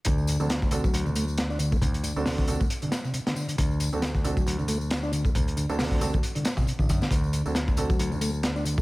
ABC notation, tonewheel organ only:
X:1
M:4/4
L:1/16
Q:"Swing 16ths" 1/4=136
K:Cdor
V:1 name="Tonewheel organ" clef=bass
D,4 z3 ^F,2 D, A, z2 D D, A, | C, z D,2 C, z2 A, z D, z C, C, D, D, D, | D,4 z3 ^F,2 D, A, z2 D D, A, | C, z D,2 C, z2 A, z D, z C, C, D, D, D, |
D,4 z3 ^F,2 D, A, z2 D D, A, |]